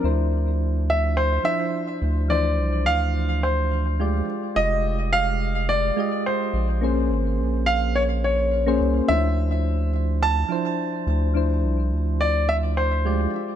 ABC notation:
X:1
M:4/4
L:1/16
Q:"Swing 16ths" 1/4=106
K:Dm
V:1 name="Grand piano"
z6 e2 c2 e4 z2 | d4 f4 c6 z2 | _e4 f4 d4 c3 z | z6 f2 _d2 d4 z2 |
e6 z2 a6 z2 | z6 d2 e2 c4 z2 |]
V:2 name="Synth keys"
[F,DEc]8- [F,DEc]2 [F,DEc]6 | [E,F,Dc]12 [^G,F=Gd]4 | [_A,FG_e]8- [A,FGe]2 [A,FGe]6 | [B,_D_Ac]12 z [B,DAc]3 |
[F,DEc]8- [F,DEc]2 [F,DEc]6 | [F,DEc]12 [^G,F=Gd]4 |]
V:3 name="Analog synth bass" clef=bass
D,,8- D,,2 z4 D,,2- | D,,2 C,,2 D,,8- D,,2 z2 | F,,,8- F,,,2 z4 B,,,2- | B,,,2 _A,,,2 B,,,8- B,,,2 C,,2 |
D,,8- D,,2 z4 D,,2- | D,,2 C,,2 D,,8- D,,2 z2 |]